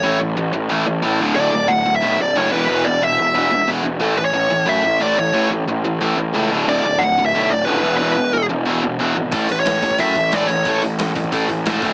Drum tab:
HH |----------------|----------------|----------------|----------------|
SD |----------------|----------------|----------------|----------------|
BD |----------------|----------------|----------------|----------------|

HH |----------------|----------------|----------------|o-o-o-o-o-o-o-o-|
SD |----------------|----------------|----------------|----o-------o---|
BD |----------------|----------------|----------------|o-----ooo-o-----|

HH |o-o-o-o-o-o-o-o-|
SD |----o-------o---|
BD |o-----ooo-o---o-|